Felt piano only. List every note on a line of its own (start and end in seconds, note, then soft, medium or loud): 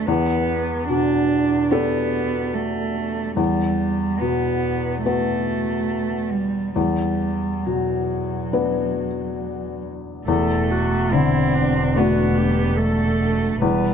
0.00 0.10 D4 soft
0.08 3.34 E2 medium
0.89 2.22 B2 soft
1.72 3.34 D4 soft
1.72 3.34 G4 soft
1.72 3.34 A4 soft
3.36 6.72 E2 medium
4.21 5.55 B2 soft
5.06 6.73 B3 soft
5.06 6.73 F#4 soft
5.06 6.73 B4 soft
6.76 10.23 E2 soft
7.67 9.07 B2 soft
8.53 10.23 B3 soft
8.53 10.23 D4 soft
8.53 10.24 B4 soft
10.28 13.58 E2 medium
11.13 12.46 D3 soft
11.96 13.58 A3 soft
11.96 13.58 D4 soft
11.96 13.58 F#4 soft
13.62 13.94 E2 medium